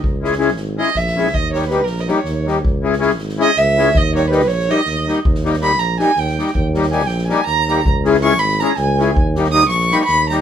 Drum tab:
SD |--ooooo---oooo|--ooo-ooo-o-o-|---oooooo-o-o-|--o-ooooo-o-o-|
BD |o---------o---|o-------------|o-------------|o-------------|

SD |-oooooo-oooooo|--ooooooo-o-o-|--ooooooo-o-o-|--ooooooo-o-o-|
BD |o-------------|o-------------|o-------------|o-------------|